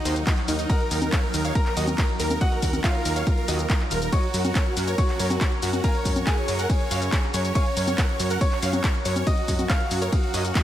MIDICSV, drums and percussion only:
0, 0, Header, 1, 2, 480
1, 0, Start_track
1, 0, Tempo, 428571
1, 780, Time_signature, 4, 2, 24, 8
1, 11906, End_track
2, 0, Start_track
2, 0, Title_t, "Drums"
2, 60, Note_on_c, 9, 46, 110
2, 60, Note_on_c, 9, 82, 73
2, 172, Note_off_c, 9, 46, 0
2, 172, Note_off_c, 9, 82, 0
2, 180, Note_on_c, 9, 42, 55
2, 180, Note_on_c, 9, 82, 41
2, 292, Note_off_c, 9, 42, 0
2, 292, Note_off_c, 9, 82, 0
2, 299, Note_on_c, 9, 36, 123
2, 300, Note_on_c, 9, 39, 125
2, 300, Note_on_c, 9, 42, 56
2, 300, Note_on_c, 9, 51, 67
2, 300, Note_on_c, 9, 82, 31
2, 411, Note_off_c, 9, 36, 0
2, 412, Note_off_c, 9, 39, 0
2, 412, Note_off_c, 9, 42, 0
2, 412, Note_off_c, 9, 51, 0
2, 412, Note_off_c, 9, 82, 0
2, 420, Note_on_c, 9, 39, 40
2, 420, Note_on_c, 9, 42, 27
2, 532, Note_off_c, 9, 39, 0
2, 532, Note_off_c, 9, 42, 0
2, 540, Note_on_c, 9, 46, 111
2, 540, Note_on_c, 9, 82, 71
2, 652, Note_off_c, 9, 46, 0
2, 652, Note_off_c, 9, 82, 0
2, 660, Note_on_c, 9, 42, 55
2, 660, Note_on_c, 9, 82, 42
2, 772, Note_off_c, 9, 42, 0
2, 772, Note_off_c, 9, 82, 0
2, 780, Note_on_c, 9, 36, 126
2, 780, Note_on_c, 9, 42, 50
2, 780, Note_on_c, 9, 51, 64
2, 780, Note_on_c, 9, 82, 30
2, 892, Note_off_c, 9, 36, 0
2, 892, Note_off_c, 9, 42, 0
2, 892, Note_off_c, 9, 51, 0
2, 892, Note_off_c, 9, 82, 0
2, 900, Note_on_c, 9, 42, 27
2, 1012, Note_off_c, 9, 42, 0
2, 1020, Note_on_c, 9, 46, 111
2, 1020, Note_on_c, 9, 82, 73
2, 1132, Note_off_c, 9, 46, 0
2, 1132, Note_off_c, 9, 82, 0
2, 1140, Note_on_c, 9, 42, 52
2, 1140, Note_on_c, 9, 63, 82
2, 1140, Note_on_c, 9, 82, 41
2, 1252, Note_off_c, 9, 42, 0
2, 1252, Note_off_c, 9, 63, 0
2, 1252, Note_off_c, 9, 82, 0
2, 1259, Note_on_c, 9, 36, 127
2, 1259, Note_on_c, 9, 39, 126
2, 1259, Note_on_c, 9, 42, 52
2, 1259, Note_on_c, 9, 51, 65
2, 1259, Note_on_c, 9, 82, 32
2, 1371, Note_off_c, 9, 36, 0
2, 1371, Note_off_c, 9, 39, 0
2, 1371, Note_off_c, 9, 42, 0
2, 1371, Note_off_c, 9, 51, 0
2, 1371, Note_off_c, 9, 82, 0
2, 1380, Note_on_c, 9, 42, 28
2, 1492, Note_off_c, 9, 42, 0
2, 1500, Note_on_c, 9, 46, 115
2, 1500, Note_on_c, 9, 82, 76
2, 1612, Note_off_c, 9, 46, 0
2, 1612, Note_off_c, 9, 82, 0
2, 1620, Note_on_c, 9, 42, 52
2, 1620, Note_on_c, 9, 82, 43
2, 1732, Note_off_c, 9, 42, 0
2, 1732, Note_off_c, 9, 82, 0
2, 1739, Note_on_c, 9, 36, 122
2, 1740, Note_on_c, 9, 42, 50
2, 1740, Note_on_c, 9, 51, 62
2, 1740, Note_on_c, 9, 82, 30
2, 1851, Note_off_c, 9, 36, 0
2, 1852, Note_off_c, 9, 42, 0
2, 1852, Note_off_c, 9, 51, 0
2, 1852, Note_off_c, 9, 82, 0
2, 1860, Note_on_c, 9, 39, 40
2, 1860, Note_on_c, 9, 42, 26
2, 1972, Note_off_c, 9, 39, 0
2, 1972, Note_off_c, 9, 42, 0
2, 1980, Note_on_c, 9, 46, 110
2, 1980, Note_on_c, 9, 82, 73
2, 2092, Note_off_c, 9, 46, 0
2, 2092, Note_off_c, 9, 82, 0
2, 2100, Note_on_c, 9, 42, 53
2, 2100, Note_on_c, 9, 63, 84
2, 2100, Note_on_c, 9, 82, 43
2, 2212, Note_off_c, 9, 42, 0
2, 2212, Note_off_c, 9, 63, 0
2, 2212, Note_off_c, 9, 82, 0
2, 2219, Note_on_c, 9, 36, 126
2, 2219, Note_on_c, 9, 39, 124
2, 2219, Note_on_c, 9, 42, 53
2, 2219, Note_on_c, 9, 51, 67
2, 2219, Note_on_c, 9, 82, 32
2, 2331, Note_off_c, 9, 36, 0
2, 2331, Note_off_c, 9, 39, 0
2, 2331, Note_off_c, 9, 42, 0
2, 2331, Note_off_c, 9, 51, 0
2, 2331, Note_off_c, 9, 82, 0
2, 2340, Note_on_c, 9, 42, 26
2, 2452, Note_off_c, 9, 42, 0
2, 2460, Note_on_c, 9, 46, 113
2, 2460, Note_on_c, 9, 82, 74
2, 2572, Note_off_c, 9, 46, 0
2, 2572, Note_off_c, 9, 82, 0
2, 2581, Note_on_c, 9, 42, 51
2, 2581, Note_on_c, 9, 63, 65
2, 2581, Note_on_c, 9, 82, 43
2, 2693, Note_off_c, 9, 42, 0
2, 2693, Note_off_c, 9, 63, 0
2, 2693, Note_off_c, 9, 82, 0
2, 2699, Note_on_c, 9, 36, 123
2, 2700, Note_on_c, 9, 42, 50
2, 2700, Note_on_c, 9, 51, 64
2, 2700, Note_on_c, 9, 82, 31
2, 2811, Note_off_c, 9, 36, 0
2, 2812, Note_off_c, 9, 42, 0
2, 2812, Note_off_c, 9, 51, 0
2, 2812, Note_off_c, 9, 82, 0
2, 2820, Note_on_c, 9, 42, 25
2, 2932, Note_off_c, 9, 42, 0
2, 2939, Note_on_c, 9, 36, 62
2, 2940, Note_on_c, 9, 46, 114
2, 2940, Note_on_c, 9, 82, 78
2, 3051, Note_off_c, 9, 36, 0
2, 3052, Note_off_c, 9, 46, 0
2, 3052, Note_off_c, 9, 82, 0
2, 3060, Note_on_c, 9, 42, 50
2, 3060, Note_on_c, 9, 63, 83
2, 3060, Note_on_c, 9, 82, 43
2, 3172, Note_off_c, 9, 42, 0
2, 3172, Note_off_c, 9, 63, 0
2, 3172, Note_off_c, 9, 82, 0
2, 3179, Note_on_c, 9, 36, 127
2, 3180, Note_on_c, 9, 39, 121
2, 3180, Note_on_c, 9, 42, 52
2, 3180, Note_on_c, 9, 51, 66
2, 3180, Note_on_c, 9, 82, 33
2, 3291, Note_off_c, 9, 36, 0
2, 3292, Note_off_c, 9, 39, 0
2, 3292, Note_off_c, 9, 42, 0
2, 3292, Note_off_c, 9, 51, 0
2, 3292, Note_off_c, 9, 82, 0
2, 3300, Note_on_c, 9, 42, 26
2, 3412, Note_off_c, 9, 42, 0
2, 3420, Note_on_c, 9, 46, 115
2, 3420, Note_on_c, 9, 82, 79
2, 3532, Note_off_c, 9, 46, 0
2, 3532, Note_off_c, 9, 82, 0
2, 3540, Note_on_c, 9, 42, 52
2, 3540, Note_on_c, 9, 82, 44
2, 3652, Note_off_c, 9, 42, 0
2, 3652, Note_off_c, 9, 82, 0
2, 3659, Note_on_c, 9, 36, 124
2, 3660, Note_on_c, 9, 42, 49
2, 3660, Note_on_c, 9, 51, 62
2, 3660, Note_on_c, 9, 82, 32
2, 3771, Note_off_c, 9, 36, 0
2, 3772, Note_off_c, 9, 42, 0
2, 3772, Note_off_c, 9, 51, 0
2, 3772, Note_off_c, 9, 82, 0
2, 3780, Note_on_c, 9, 42, 25
2, 3892, Note_off_c, 9, 42, 0
2, 3900, Note_on_c, 9, 46, 113
2, 3900, Note_on_c, 9, 82, 77
2, 4012, Note_off_c, 9, 46, 0
2, 4012, Note_off_c, 9, 82, 0
2, 4020, Note_on_c, 9, 42, 52
2, 4020, Note_on_c, 9, 82, 44
2, 4132, Note_off_c, 9, 42, 0
2, 4132, Note_off_c, 9, 82, 0
2, 4139, Note_on_c, 9, 36, 126
2, 4140, Note_on_c, 9, 39, 123
2, 4140, Note_on_c, 9, 42, 50
2, 4140, Note_on_c, 9, 51, 66
2, 4140, Note_on_c, 9, 82, 34
2, 4251, Note_off_c, 9, 36, 0
2, 4252, Note_off_c, 9, 39, 0
2, 4252, Note_off_c, 9, 42, 0
2, 4252, Note_off_c, 9, 51, 0
2, 4252, Note_off_c, 9, 82, 0
2, 4260, Note_on_c, 9, 39, 37
2, 4260, Note_on_c, 9, 42, 26
2, 4372, Note_off_c, 9, 39, 0
2, 4372, Note_off_c, 9, 42, 0
2, 4379, Note_on_c, 9, 46, 109
2, 4379, Note_on_c, 9, 82, 77
2, 4491, Note_off_c, 9, 46, 0
2, 4491, Note_off_c, 9, 82, 0
2, 4500, Note_on_c, 9, 42, 50
2, 4500, Note_on_c, 9, 82, 43
2, 4612, Note_off_c, 9, 42, 0
2, 4612, Note_off_c, 9, 82, 0
2, 4619, Note_on_c, 9, 36, 123
2, 4620, Note_on_c, 9, 42, 49
2, 4620, Note_on_c, 9, 51, 67
2, 4620, Note_on_c, 9, 82, 33
2, 4731, Note_off_c, 9, 36, 0
2, 4732, Note_off_c, 9, 42, 0
2, 4732, Note_off_c, 9, 51, 0
2, 4732, Note_off_c, 9, 82, 0
2, 4740, Note_on_c, 9, 42, 26
2, 4852, Note_off_c, 9, 42, 0
2, 4859, Note_on_c, 9, 46, 108
2, 4859, Note_on_c, 9, 82, 79
2, 4971, Note_off_c, 9, 46, 0
2, 4971, Note_off_c, 9, 82, 0
2, 4980, Note_on_c, 9, 42, 52
2, 4980, Note_on_c, 9, 63, 81
2, 4980, Note_on_c, 9, 82, 45
2, 5092, Note_off_c, 9, 42, 0
2, 5092, Note_off_c, 9, 63, 0
2, 5092, Note_off_c, 9, 82, 0
2, 5099, Note_on_c, 9, 36, 124
2, 5100, Note_on_c, 9, 39, 119
2, 5100, Note_on_c, 9, 42, 52
2, 5100, Note_on_c, 9, 51, 69
2, 5100, Note_on_c, 9, 82, 33
2, 5211, Note_off_c, 9, 36, 0
2, 5212, Note_off_c, 9, 39, 0
2, 5212, Note_off_c, 9, 42, 0
2, 5212, Note_off_c, 9, 51, 0
2, 5212, Note_off_c, 9, 82, 0
2, 5220, Note_on_c, 9, 42, 27
2, 5332, Note_off_c, 9, 42, 0
2, 5339, Note_on_c, 9, 46, 107
2, 5339, Note_on_c, 9, 82, 80
2, 5451, Note_off_c, 9, 46, 0
2, 5451, Note_off_c, 9, 82, 0
2, 5459, Note_on_c, 9, 42, 52
2, 5459, Note_on_c, 9, 82, 46
2, 5571, Note_off_c, 9, 42, 0
2, 5571, Note_off_c, 9, 82, 0
2, 5579, Note_on_c, 9, 36, 118
2, 5579, Note_on_c, 9, 42, 48
2, 5579, Note_on_c, 9, 51, 64
2, 5579, Note_on_c, 9, 82, 31
2, 5691, Note_off_c, 9, 36, 0
2, 5691, Note_off_c, 9, 42, 0
2, 5691, Note_off_c, 9, 51, 0
2, 5691, Note_off_c, 9, 82, 0
2, 5700, Note_on_c, 9, 39, 36
2, 5700, Note_on_c, 9, 42, 27
2, 5812, Note_off_c, 9, 39, 0
2, 5812, Note_off_c, 9, 42, 0
2, 5819, Note_on_c, 9, 46, 106
2, 5819, Note_on_c, 9, 82, 79
2, 5931, Note_off_c, 9, 46, 0
2, 5931, Note_off_c, 9, 82, 0
2, 5939, Note_on_c, 9, 42, 52
2, 5939, Note_on_c, 9, 63, 82
2, 5939, Note_on_c, 9, 82, 44
2, 6051, Note_off_c, 9, 42, 0
2, 6051, Note_off_c, 9, 63, 0
2, 6051, Note_off_c, 9, 82, 0
2, 6059, Note_on_c, 9, 36, 120
2, 6060, Note_on_c, 9, 39, 117
2, 6060, Note_on_c, 9, 42, 52
2, 6060, Note_on_c, 9, 51, 69
2, 6060, Note_on_c, 9, 82, 33
2, 6171, Note_off_c, 9, 36, 0
2, 6172, Note_off_c, 9, 39, 0
2, 6172, Note_off_c, 9, 42, 0
2, 6172, Note_off_c, 9, 51, 0
2, 6172, Note_off_c, 9, 82, 0
2, 6179, Note_on_c, 9, 42, 26
2, 6291, Note_off_c, 9, 42, 0
2, 6299, Note_on_c, 9, 46, 108
2, 6299, Note_on_c, 9, 82, 78
2, 6411, Note_off_c, 9, 46, 0
2, 6411, Note_off_c, 9, 82, 0
2, 6420, Note_on_c, 9, 42, 51
2, 6420, Note_on_c, 9, 63, 65
2, 6420, Note_on_c, 9, 82, 43
2, 6532, Note_off_c, 9, 42, 0
2, 6532, Note_off_c, 9, 63, 0
2, 6532, Note_off_c, 9, 82, 0
2, 6539, Note_on_c, 9, 36, 114
2, 6539, Note_on_c, 9, 42, 50
2, 6539, Note_on_c, 9, 51, 67
2, 6539, Note_on_c, 9, 82, 34
2, 6651, Note_off_c, 9, 36, 0
2, 6651, Note_off_c, 9, 42, 0
2, 6651, Note_off_c, 9, 51, 0
2, 6651, Note_off_c, 9, 82, 0
2, 6660, Note_on_c, 9, 42, 27
2, 6772, Note_off_c, 9, 42, 0
2, 6779, Note_on_c, 9, 36, 59
2, 6780, Note_on_c, 9, 46, 107
2, 6780, Note_on_c, 9, 82, 80
2, 6891, Note_off_c, 9, 36, 0
2, 6892, Note_off_c, 9, 46, 0
2, 6892, Note_off_c, 9, 82, 0
2, 6900, Note_on_c, 9, 42, 53
2, 6900, Note_on_c, 9, 63, 80
2, 6900, Note_on_c, 9, 82, 45
2, 7012, Note_off_c, 9, 42, 0
2, 7012, Note_off_c, 9, 63, 0
2, 7012, Note_off_c, 9, 82, 0
2, 7019, Note_on_c, 9, 36, 119
2, 7020, Note_on_c, 9, 39, 117
2, 7020, Note_on_c, 9, 42, 53
2, 7020, Note_on_c, 9, 51, 71
2, 7020, Note_on_c, 9, 82, 34
2, 7131, Note_off_c, 9, 36, 0
2, 7132, Note_off_c, 9, 39, 0
2, 7132, Note_off_c, 9, 42, 0
2, 7132, Note_off_c, 9, 51, 0
2, 7132, Note_off_c, 9, 82, 0
2, 7140, Note_on_c, 9, 42, 27
2, 7252, Note_off_c, 9, 42, 0
2, 7260, Note_on_c, 9, 46, 103
2, 7260, Note_on_c, 9, 82, 82
2, 7372, Note_off_c, 9, 46, 0
2, 7372, Note_off_c, 9, 82, 0
2, 7380, Note_on_c, 9, 42, 55
2, 7380, Note_on_c, 9, 82, 46
2, 7492, Note_off_c, 9, 42, 0
2, 7492, Note_off_c, 9, 82, 0
2, 7499, Note_on_c, 9, 36, 116
2, 7500, Note_on_c, 9, 42, 50
2, 7500, Note_on_c, 9, 51, 68
2, 7500, Note_on_c, 9, 82, 32
2, 7611, Note_off_c, 9, 36, 0
2, 7612, Note_off_c, 9, 42, 0
2, 7612, Note_off_c, 9, 51, 0
2, 7612, Note_off_c, 9, 82, 0
2, 7620, Note_on_c, 9, 42, 27
2, 7732, Note_off_c, 9, 42, 0
2, 7740, Note_on_c, 9, 46, 105
2, 7740, Note_on_c, 9, 82, 81
2, 7852, Note_off_c, 9, 46, 0
2, 7852, Note_off_c, 9, 82, 0
2, 7859, Note_on_c, 9, 42, 54
2, 7859, Note_on_c, 9, 82, 47
2, 7971, Note_off_c, 9, 42, 0
2, 7971, Note_off_c, 9, 82, 0
2, 7979, Note_on_c, 9, 36, 117
2, 7980, Note_on_c, 9, 39, 121
2, 7980, Note_on_c, 9, 42, 56
2, 7980, Note_on_c, 9, 51, 74
2, 7980, Note_on_c, 9, 82, 34
2, 8091, Note_off_c, 9, 36, 0
2, 8092, Note_off_c, 9, 39, 0
2, 8092, Note_off_c, 9, 42, 0
2, 8092, Note_off_c, 9, 51, 0
2, 8092, Note_off_c, 9, 82, 0
2, 8100, Note_on_c, 9, 39, 35
2, 8100, Note_on_c, 9, 42, 27
2, 8212, Note_off_c, 9, 39, 0
2, 8212, Note_off_c, 9, 42, 0
2, 8220, Note_on_c, 9, 46, 102
2, 8220, Note_on_c, 9, 82, 78
2, 8332, Note_off_c, 9, 46, 0
2, 8332, Note_off_c, 9, 82, 0
2, 8340, Note_on_c, 9, 42, 54
2, 8340, Note_on_c, 9, 82, 44
2, 8452, Note_off_c, 9, 42, 0
2, 8452, Note_off_c, 9, 82, 0
2, 8459, Note_on_c, 9, 36, 117
2, 8459, Note_on_c, 9, 42, 55
2, 8459, Note_on_c, 9, 51, 71
2, 8459, Note_on_c, 9, 82, 32
2, 8571, Note_off_c, 9, 36, 0
2, 8571, Note_off_c, 9, 42, 0
2, 8571, Note_off_c, 9, 51, 0
2, 8571, Note_off_c, 9, 82, 0
2, 8579, Note_on_c, 9, 42, 28
2, 8691, Note_off_c, 9, 42, 0
2, 8699, Note_on_c, 9, 46, 103
2, 8699, Note_on_c, 9, 82, 76
2, 8811, Note_off_c, 9, 46, 0
2, 8811, Note_off_c, 9, 82, 0
2, 8820, Note_on_c, 9, 42, 54
2, 8820, Note_on_c, 9, 63, 80
2, 8820, Note_on_c, 9, 82, 44
2, 8932, Note_off_c, 9, 42, 0
2, 8932, Note_off_c, 9, 63, 0
2, 8932, Note_off_c, 9, 82, 0
2, 8939, Note_on_c, 9, 36, 118
2, 8939, Note_on_c, 9, 39, 120
2, 8939, Note_on_c, 9, 42, 55
2, 8939, Note_on_c, 9, 51, 72
2, 8939, Note_on_c, 9, 82, 33
2, 9051, Note_off_c, 9, 36, 0
2, 9051, Note_off_c, 9, 39, 0
2, 9051, Note_off_c, 9, 42, 0
2, 9051, Note_off_c, 9, 51, 0
2, 9051, Note_off_c, 9, 82, 0
2, 9059, Note_on_c, 9, 42, 29
2, 9171, Note_off_c, 9, 42, 0
2, 9180, Note_on_c, 9, 46, 103
2, 9180, Note_on_c, 9, 82, 78
2, 9292, Note_off_c, 9, 46, 0
2, 9292, Note_off_c, 9, 82, 0
2, 9300, Note_on_c, 9, 42, 57
2, 9300, Note_on_c, 9, 82, 44
2, 9412, Note_off_c, 9, 42, 0
2, 9412, Note_off_c, 9, 82, 0
2, 9419, Note_on_c, 9, 36, 115
2, 9420, Note_on_c, 9, 42, 51
2, 9420, Note_on_c, 9, 51, 70
2, 9420, Note_on_c, 9, 82, 31
2, 9531, Note_off_c, 9, 36, 0
2, 9532, Note_off_c, 9, 42, 0
2, 9532, Note_off_c, 9, 51, 0
2, 9532, Note_off_c, 9, 82, 0
2, 9540, Note_on_c, 9, 39, 36
2, 9540, Note_on_c, 9, 42, 28
2, 9652, Note_off_c, 9, 39, 0
2, 9652, Note_off_c, 9, 42, 0
2, 9659, Note_on_c, 9, 46, 104
2, 9659, Note_on_c, 9, 82, 77
2, 9771, Note_off_c, 9, 46, 0
2, 9771, Note_off_c, 9, 82, 0
2, 9780, Note_on_c, 9, 42, 56
2, 9780, Note_on_c, 9, 63, 80
2, 9780, Note_on_c, 9, 82, 44
2, 9892, Note_off_c, 9, 42, 0
2, 9892, Note_off_c, 9, 63, 0
2, 9892, Note_off_c, 9, 82, 0
2, 9899, Note_on_c, 9, 36, 118
2, 9899, Note_on_c, 9, 39, 122
2, 9899, Note_on_c, 9, 42, 55
2, 9899, Note_on_c, 9, 51, 74
2, 9899, Note_on_c, 9, 82, 34
2, 10011, Note_off_c, 9, 36, 0
2, 10011, Note_off_c, 9, 39, 0
2, 10011, Note_off_c, 9, 42, 0
2, 10011, Note_off_c, 9, 51, 0
2, 10011, Note_off_c, 9, 82, 0
2, 10019, Note_on_c, 9, 42, 27
2, 10131, Note_off_c, 9, 42, 0
2, 10140, Note_on_c, 9, 46, 104
2, 10140, Note_on_c, 9, 82, 79
2, 10252, Note_off_c, 9, 46, 0
2, 10252, Note_off_c, 9, 82, 0
2, 10260, Note_on_c, 9, 42, 54
2, 10260, Note_on_c, 9, 63, 61
2, 10260, Note_on_c, 9, 82, 44
2, 10372, Note_off_c, 9, 42, 0
2, 10372, Note_off_c, 9, 63, 0
2, 10372, Note_off_c, 9, 82, 0
2, 10379, Note_on_c, 9, 36, 118
2, 10380, Note_on_c, 9, 42, 56
2, 10380, Note_on_c, 9, 51, 68
2, 10380, Note_on_c, 9, 82, 30
2, 10491, Note_off_c, 9, 36, 0
2, 10492, Note_off_c, 9, 42, 0
2, 10492, Note_off_c, 9, 51, 0
2, 10492, Note_off_c, 9, 82, 0
2, 10500, Note_on_c, 9, 42, 27
2, 10612, Note_off_c, 9, 42, 0
2, 10619, Note_on_c, 9, 36, 57
2, 10619, Note_on_c, 9, 46, 103
2, 10619, Note_on_c, 9, 82, 73
2, 10731, Note_off_c, 9, 36, 0
2, 10731, Note_off_c, 9, 46, 0
2, 10731, Note_off_c, 9, 82, 0
2, 10739, Note_on_c, 9, 42, 55
2, 10739, Note_on_c, 9, 63, 74
2, 10739, Note_on_c, 9, 82, 43
2, 10851, Note_off_c, 9, 42, 0
2, 10851, Note_off_c, 9, 63, 0
2, 10851, Note_off_c, 9, 82, 0
2, 10859, Note_on_c, 9, 36, 120
2, 10859, Note_on_c, 9, 39, 124
2, 10859, Note_on_c, 9, 42, 58
2, 10859, Note_on_c, 9, 51, 73
2, 10859, Note_on_c, 9, 82, 31
2, 10971, Note_off_c, 9, 36, 0
2, 10971, Note_off_c, 9, 39, 0
2, 10971, Note_off_c, 9, 42, 0
2, 10971, Note_off_c, 9, 51, 0
2, 10971, Note_off_c, 9, 82, 0
2, 10980, Note_on_c, 9, 42, 30
2, 11092, Note_off_c, 9, 42, 0
2, 11099, Note_on_c, 9, 46, 104
2, 11099, Note_on_c, 9, 82, 75
2, 11211, Note_off_c, 9, 46, 0
2, 11211, Note_off_c, 9, 82, 0
2, 11219, Note_on_c, 9, 42, 56
2, 11219, Note_on_c, 9, 82, 43
2, 11331, Note_off_c, 9, 42, 0
2, 11331, Note_off_c, 9, 82, 0
2, 11339, Note_on_c, 9, 36, 117
2, 11339, Note_on_c, 9, 42, 54
2, 11339, Note_on_c, 9, 51, 66
2, 11339, Note_on_c, 9, 82, 30
2, 11451, Note_off_c, 9, 36, 0
2, 11451, Note_off_c, 9, 42, 0
2, 11451, Note_off_c, 9, 51, 0
2, 11451, Note_off_c, 9, 82, 0
2, 11460, Note_on_c, 9, 42, 28
2, 11572, Note_off_c, 9, 42, 0
2, 11579, Note_on_c, 9, 46, 101
2, 11579, Note_on_c, 9, 82, 73
2, 11691, Note_off_c, 9, 46, 0
2, 11691, Note_off_c, 9, 82, 0
2, 11700, Note_on_c, 9, 42, 58
2, 11700, Note_on_c, 9, 82, 43
2, 11812, Note_off_c, 9, 42, 0
2, 11812, Note_off_c, 9, 82, 0
2, 11819, Note_on_c, 9, 36, 117
2, 11820, Note_on_c, 9, 38, 70
2, 11820, Note_on_c, 9, 39, 125
2, 11820, Note_on_c, 9, 42, 56
2, 11820, Note_on_c, 9, 51, 72
2, 11820, Note_on_c, 9, 82, 33
2, 11906, Note_off_c, 9, 36, 0
2, 11906, Note_off_c, 9, 38, 0
2, 11906, Note_off_c, 9, 39, 0
2, 11906, Note_off_c, 9, 42, 0
2, 11906, Note_off_c, 9, 51, 0
2, 11906, Note_off_c, 9, 82, 0
2, 11906, End_track
0, 0, End_of_file